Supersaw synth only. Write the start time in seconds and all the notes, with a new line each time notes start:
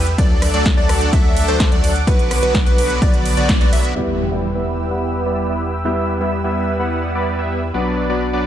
0.18 F#3 A3 D4 A4 D5
0.54 F#3 A3 D4 A4 D5
0.77 F#3 A3 D4 A4 D5
1.13 F#3 A3 D4 A4 E5
1.48 F#3 A3 D4 A4 C5
1.72 F#3 A3 D4 A4 D5
2.07 D3 F#3 B3 F#4 B4
2.43 D3 F#3 B3 F#4 B4
2.66 D3 F#3 B3 F#4 B4
3.02 D3 F#3 B3 F#4 D5
3.37 D3 F#3 B3 F#4 D5
3.61 D3 F#3 B3 F#4 D5
3.73 D3 F#3 B3 F#4 E5
3.96 G3 B3 E4 B4 E5
4.32 G3 B3 E4 B4 E5
4.55 G3 B3 E4 B4 E5
4.91 G3 B3 E4 B4 F#5
5.26 G3 B3 E4 B4 D5
5.50 G3 B3 E4 B4 E5
5.85 G3 B3 E4 B4 E5
6.21 G3 B3 E4 B4 E5
6.44 G3 B3 E4 B4 E5
6.80 G3 B3 E4 B4 F#5
7.15 G3 B3 E4 B4 D5
7.39 G3 B3 E4 B4 E5
7.74 F#3 B3 D4 B4 D5
8.10 F#3 B3 D4 B4 D5
8.33 F#3 B3 D4 B4 D5